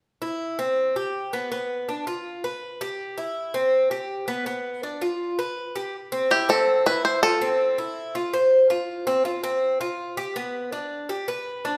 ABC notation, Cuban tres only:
X:1
M:4/4
L:1/8
Q:1/4=163
K:C
V:1 name="Cuban tres"
z E2 C2 G2 B, | B,2 D F2 B2 G- | G E2 C2 G2 B, | B,2 D F2 B2 G |
z C E C2 E2 F | C2 E2 F c2 F- | F C F C2 F2 G | B,2 D2 G B2 D |]